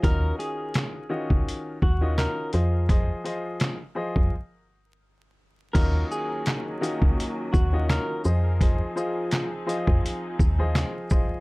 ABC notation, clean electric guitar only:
X:1
M:4/4
L:1/8
Q:"Swing 16ths" 1/4=84
K:Ebdor
V:1 name="Clean electric guitar"
B A4 G B z | z8 | B A4 G B z | z8 |]